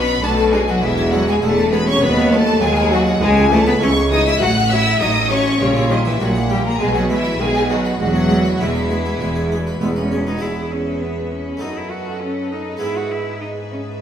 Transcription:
Already playing: B1 B2 B3 B4 B5
0.08 B4
0.22 B1 B2 A3 D4 A4 A5
0.38 B4
0.52 G#3 D4 F#4 G#4 G#5
0.67 F#3 B3 F#4 F#5
0.82 E1 E2 E3 G#3 E4 E5
0.98 G#4
1.11 F#3 G#3 E4 F#4 F#5
1.28 G#3 G#4 B4 G#5
1.41 E1 E2 G#3 A3 E4 A4 A5
1.58 B4
1.71 G#3 B3 G#4 B4 B5
1.88 B3 C#4 C#5 C#6
2.01 D#2 F#3 B3 B4 B5
2.17 F#4
2.31 F#3 A3 B3 A4 A5
2.47 B4
2.61 D#2 F#3 G#3 F#4 G#4 G#5
2.76 B4
2.91 F#3 F#4 F#5
3.07 B3
3.21 C#2 E3 G#3 G#4 G#5
3.37 G#4
3.51 E3 A3 E4 A4 A5
3.66 B3 B4 C#5 B5
3.80 C#2 E3 C#4 E4 C#5 C#6
3.96 C#5
4.11 E3 D#4 G#4 D#5 D#6
4.27 C#4 E4 E5 E6
4.40 A1 A2 F#3 F#4 F#5 F#6
4.56 F#4
4.70 F#3 C#4 E4 E5 E6
4.85 A4
5.00 A1 A2 F#3 C#4 D#4 D#5 D#6
5.15 A4
5.29 F#3 C#4 F#4 C#5 C#6
5.45 A3
5.60 A#1 A#2 C#3 G3 C#4 C#5
5.76 E4
5.90 D#3 G3 C#4 D#4 D#5
6.05 E3 E4 G4 E5
6.20 A#1 A#2 F#3 G3 C#4 F#4 F#5
6.35 G4
6.50 G3 E4 G4 G5
6.65 A#3 A#4 A#5
6.79 B1 B2 G#3 G#4 G#5
6.95 F#3 F#4 G#4 F#5
7.10 E3 G#3 E4 E5
7.25 B4
7.39 B1 B2 D#3 G#3 G#4 G#5
7.55 F#4
7.69 D#3 F#3 D#4 F#4 F#5
7.85 B4
7.99 E1 E2 F#3 G#3 F#4 F#5
8.15 G#4
8.30 G#3 E4
8.45 B4
8.59 E1 E2 E3 G#3 E4 E5
8.75 B4
8.91 G#3 G#4
9.05 B3
9.20 E1 E2 G#3
9.36 G#4
9.52 G#3 E4
9.67 B4
9.80 E1 E2 G#3 B3 E4
9.96 C#4 B4
10.12 G#3 G#4
10.27 B3 D#4
10.37 G#3 B3 E4 E5
10.41 E2 E4 G#4 B4
10.72 C#4
11.01 B3
11.31 C#4
11.57 A3 B3 D#4
11.62 F#2 A4 D#5
11.77 E4
11.90 F#4
12.21 C#4
12.52 D#4
12.77 G#3 B3 E4
12.81 G#2 E4 G#4 E5
12.97 F#4
13.11 E4
13.41 D#4
13.71 C#4

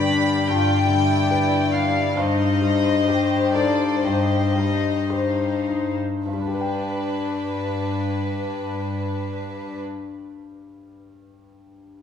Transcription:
Already playing: G2 D3 G4 B4 D5 B5
0.10 D4
0.48 G2 F4 D5 G5
0.89 D3 E4
1.31 G4 B4
1.73 D4 F5
2.17 G2 D#4 C5 D#5
2.62 G3
3.08 G4 C5
3.53 D#4 A4 D5
4.04 G2 G4 D#5
4.56 G3 D#4
5.10 D#4 G4 C5
5.69 D#4
6.26 G2 D4 B4
6.33 G3
6.40 D4
6.47 G4
6.54 B4
6.61 G5

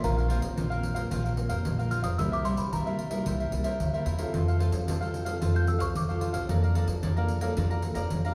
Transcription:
Already playing: F3 A#3 C4
0.03 A#1 A#2 F4 A#4 C5 F5 A#5, pandeiro
0.17 A#4 C5 F5, pandeiro
0.28 F3 A#3 C4 F4 A#4 C5 F5, pandeiro
0.41 muted cavaquinho stroke, pandeiro
0.56 A#1 F2 F4 A#4 C5 F5, pandeiro
0.70 F3 A#3 C4 A#4 C5 F5, pandeiro
0.83 pandeiro
0.94 F3 A#3 C4 A#4 C5 F5, pandeiro
1.10 A#1 A#2 F3 A#3 C4 F4 A#4 C5 F5, pandeiro
1.24 A#4 C5 F5, pandeiro
1.36 F3 A#3 C4, muted cavaquinho stroke, pandeiro
1.49 F2 A#4 C5 F5, pandeiro
1.65 A#1 F2, pandeiro
1.78 F3 A#3 C4 A#4 C5 F5, pandeiro
1.91 F4 A#4 C5 F5 F6, pandeiro
2.02 F2 A#4 C5 F5 D#6, pandeiro
2.18 C2 C3 G3 A#3 E4 A#4 C5 E5 E6, pandeiro
2.32 A#4 C5 E5 D6, pandeiro
2.44 G3 A#3 E4 A#4 C5 E5 C6, pandeiro
2.56 C3 B5, muted cavaquinho stroke, pandeiro
2.72 C2 G2 E4 A#4 C5 E5 A#5, pandeiro
2.86 G3 A#3 E4 A#4 C5 E5, pandeiro
2.99 pandeiro
3.10 G3 A#3 E4 A#4 C5 E5, pandeiro
3.25 C2 C3 G3 A#3 E4 A#4 C5 E5, pandeiro
3.40 A#4 C5 E5, pandeiro
3.52 C2 G3 A#3 E4, muted cavaquinho stroke, pandeiro
3.64 A#4 C5 E5, pandeiro
3.80 D2 G2, pandeiro
3.93 G3 A#3 E4 A#4 C5 E5, pandeiro
4.05 E2 E4 A#4 C5 E5, pandeiro
4.18 C4 F4 A4 A#4 C5 E5, pandeiro
4.33 F2 F3 F4 A4 C5 F5, pandeiro
4.48 A4 C5 F5, pandeiro
4.59 C4 F4 A4 C5 F5, pandeiro
4.72 F3, muted cavaquinho stroke, pandeiro
4.87 F2 C3 F4 A4 C5 F5, pandeiro
5.01 C4 F4 A4 C5 F5, pandeiro
5.14 pandeiro
5.25 C4 F4 A4 C5 F5, pandeiro
5.41 F2 F3 C4 F4 A4 C5 F5, pandeiro
5.54 A4 C5 F5 G6, pandeiro
5.67 C4 F4 A4 E6, muted cavaquinho stroke, pandeiro
5.79 C2 A4 C5 F5 C#6, pandeiro
5.95 F2 C3 D6, pandeiro
6.09 C4 F4 A4 C5 F5, pandeiro
6.20 F4 A4 C5 F5, pandeiro
6.33 C2 A4 C5 F5, pandeiro
6.48 F2 F3 A#3 D4 A4 D5 F5 A#5, pandeiro
6.62 D5 F5 A#5, pandeiro
6.75 A#3 D4 A4 D5 F5 A#5, pandeiro
6.88 F3, muted cavaquinho stroke, pandeiro
7.03 F2 F3 A4 D5 F5 A#5, pandeiro
7.16 A#3 D4 A4 D5 F5 A#5, pandeiro
7.28 pandeiro
7.41 A#3 D4 A4 D5 F5 A#5, pandeiro
7.57 F2 F3 A#3 D4 A4 D5 F5 A#5, pandeiro
7.70 D5 F5 A#5, pandeiro
7.82 A#3 D4 A4, muted cavaquinho stroke, pandeiro
7.94 F2 D5 F5 A#5, pandeiro
8.10 F2 F3, pandeiro
8.25 A#3 D4 A4 D5 F5 A#5, pandeiro

